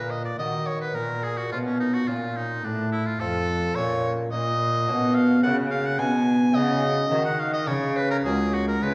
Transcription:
Already playing: lute A#2 A#3 F4, cello A#2, oboe B4
0.11 oboe D#5
0.25 oboe D5
0.39 cello D#3, lute D#3 A#3 F#4, oboe D#5
0.67 oboe C#5
0.81 oboe B4
0.95 cello A#2, lute A#2, oboe A#4
1.23 oboe G#4
1.38 oboe F#4
1.52 cello B2, lute B2 A#3 C#4 F4, oboe F4
1.66 oboe C#4
1.80 oboe D#4
1.94 oboe F#4
2.08 cello A#2, lute A#2 A#3 C#4 F4, oboe F4
2.36 oboe D#4
2.64 cello A2, lute A2, oboe D4
2.92 oboe E4
3.06 oboe F4
3.20 cello F2, lute F2 C4 F4, oboe A4
3.75 cello A#2, lute A#2 A#3 C#4 F4, oboe C#5
4.32 cello A#2, lute A#2, oboe D#5
4.88 cello B2, lute B2 A#3 C#4 F#4
5.15 oboe F5
5.43 lute C#3 A#3 C#4 F#4, cello C#3, oboe F#5
5.71 oboe F5
5.86 oboe F#5
5.99 lute B2, cello B2, oboe G#5
6.54 cello C#3, lute C#3 G#3 D#4 F#4, oboe D#5
7.10 cello D#3, lute D#3 G#3 D#4 F#4
7.25 oboe F#5
7.39 oboe F5
7.54 oboe D#5
7.68 cello C#3, lute C#3, oboe C#5
7.97 oboe B4
8.11 oboe A#4
8.25 cello C#2, lute A#3 C#4 F#4, oboe G#4
8.54 oboe F#4
8.68 oboe A#4
8.82 lute C#3 G#3 C#4 F4, cello C#3, oboe B4

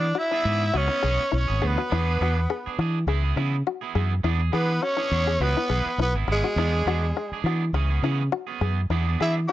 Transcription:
Already playing: fingered electric bass E3, tenor saxophone D4, five-string banjo G#4, trumpet D5
0.15 tenor saxophone E4, five-string banjo F#4, trumpet E5
0.31 clean electric guitar B3 D4 G#4, five-string banjo E4
0.45 fingered electric bass G#2, clean electric guitar E3 B3 D4 G#4
0.74 fingered electric bass C#2, clean electric guitar B3 C#4 G#4, tenor saxophone C#4, five-string banjo F#4, trumpet C#5, muted clean electric guitar stroke
0.88 clean electric guitar B3 C#4 G#4, five-string banjo E4
1.03 fingered electric bass B1, clean electric guitar E3 B3 C#4 G#4, five-string banjo G#4
1.20 muted fingered electric bass stroke
1.32 fingered electric bass B1, tenor saxophone C#4, five-string banjo E4
1.37 trumpet C#5
1.48 fingered electric bass G#1, clean electric guitar B3 C#4 G#4
1.62 fingered electric bass D2, clean electric guitar E3 B3 C#4 G#4, tenor saxophone B3, five-string banjo G#4
1.67 trumpet B4
1.78 five-string banjo F#4
1.90 fingered electric bass E2, clean electric guitar B3 D4 G#4, five-string banjo E4
2.07 clean electric guitar D4 G#4
2.20 fingered electric bass E2, clean electric guitar B3 D4 G#4, five-string banjo F#4
2.50 five-string banjo G#4
2.66 clean electric guitar D4 G#4, muted fingered electric bass stroke
2.79 fingered electric bass E3, clean electric guitar D4 G#4, muted five-string banjo stroke, muted clean electric guitar stroke
3.07 fingered electric bass C#2, clean electric guitar E3 E4 G#4, five-string banjo G#4, muted clean electric guitar stroke
3.23 clean electric guitar B3 E4 G#4
3.36 fingered electric bass C#3, clean electric guitar E3 B3 E4 G#4, five-string banjo E4
3.67 five-string banjo F#4
3.81 clean electric guitar B3 E4 G#4
3.95 fingered electric bass F#2, clean electric guitar E3 B3 E4 G#4, five-string banjo G#4
4.23 fingered electric bass E2, clean electric guitar B3 D4 G#4, five-string banjo E4
4.39 clean electric guitar G#4
4.52 fingered electric bass E3, clean electric guitar B3 D4 G#4, tenor saxophone B3, five-string banjo G#4, trumpet B4
4.83 tenor saxophone C#4, five-string banjo F#4, trumpet C#5
4.97 clean electric guitar D4 G#4, five-string banjo E4
5.12 fingered electric bass E2, clean electric guitar B3 D4 G#4
5.27 five-string banjo G#4
5.40 fingered electric bass C#2, clean electric guitar E3 B3 E4 G#4, tenor saxophone B3, five-string banjo F#4, trumpet B4
5.56 clean electric guitar B3, five-string banjo E4, muted clean electric guitar stroke
5.69 fingered electric bass B1, clean electric guitar E3 B3 E4 G#4, five-string banjo G#4
5.86 muted fingered electric bass stroke
5.98 fingered electric bass B1, tenor saxophone B3, five-string banjo E4, trumpet B4
6.14 fingered electric bass G#1, clean electric guitar B3 E4 G#4
6.28 fingered electric bass G#1, clean electric guitar E3 B3 E4 G#4, muted five-string banjo stroke
6.32 tenor saxophone G#3, trumpet G#4
6.44 five-string banjo F#4
6.56 fingered electric bass E2, clean electric guitar B3 D4 G#4, five-string banjo E4
6.73 clean electric guitar D4 G#4
6.86 fingered electric bass E2, clean electric guitar B3 D4 G#4, five-string banjo F#4
7.17 five-string banjo G#4
7.32 clean electric guitar D4 G#4, muted fingered electric bass stroke
7.44 fingered electric bass E3, clean electric guitar B3 D4 G#4, five-string banjo F#4
7.73 fingered electric bass C#2, clean electric guitar E3 C#4 G#4, five-string banjo G#4, muted clean electric guitar stroke
7.90 clean electric guitar B3 C#4 G#4
8.03 fingered electric bass C#3, clean electric guitar E3 B3 C#4 G#4, five-string banjo E4
8.32 five-string banjo F#4
8.47 clean electric guitar B3 C#4 G#4
8.61 fingered electric bass F#2, clean electric guitar E3 B3 G#4, five-string banjo G#4
8.90 fingered electric bass E2, clean electric guitar E3 B3 D4 G#4, five-string banjo E4
9.07 clean electric guitar B3 D4 G#4
9.19 clean electric guitar E3 B3 D4 G#4, fingered electric bass E3, tenor saxophone E4, five-string banjo G#4, trumpet E5
9.48 five-string banjo F#4, tenor saxophone G#4

